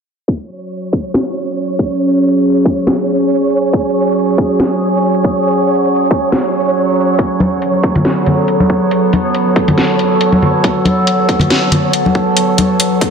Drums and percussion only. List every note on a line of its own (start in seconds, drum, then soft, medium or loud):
0.28 kick loud
0.93 kick loud
1.14 snare loud
1.79 kick medium
2.65 kick loud
2.87 snare loud
3.73 kick loud
4.38 kick loud
4.60 snare loud
5.24 kick medium
6.11 kick loud
6.32 snare loud
7.19 kick loud
7.19 closed hi-hat medium
7.40 closed hi-hat soft
7.40 high conga loud
7.62 closed hi-hat medium
7.83 kick loud
7.83 closed hi-hat soft
7.95 closed hi-hat soft
7.95 high conga medium
7.95 low conga medium
8.05 snare loud
8.05 closed hi-hat medium
8.26 closed hi-hat soft
8.26 low conga medium
8.48 closed hi-hat medium
8.60 high conga medium
8.70 kick medium
8.91 closed hi-hat medium
9.13 closed hi-hat medium
9.13 high conga medium
9.35 closed hi-hat medium
9.56 kick medium
9.56 closed hi-hat soft
9.68 closed hi-hat soft
9.68 high conga medium
9.68 low conga medium
9.78 snare loud
9.78 closed hi-hat medium
9.99 closed hi-hat soft
10.21 closed hi-hat medium
10.32 high conga medium
10.42 low conga medium
10.64 kick loud
10.64 closed hi-hat medium
10.85 closed hi-hat medium
10.85 high conga medium
11.07 closed hi-hat medium
11.29 kick loud
11.29 closed hi-hat medium
11.39 closed hi-hat soft
11.39 high conga medium
11.39 low conga medium
11.50 snare loud
11.50 closed hi-hat medium
11.72 closed hi-hat soft
11.72 low conga medium
11.93 closed hi-hat medium
12.06 high conga medium
12.15 kick medium
12.37 closed hi-hat medium
12.58 closed hi-hat medium
12.58 high conga medium
12.80 closed hi-hat medium
13.01 kick loud
13.01 closed hi-hat soft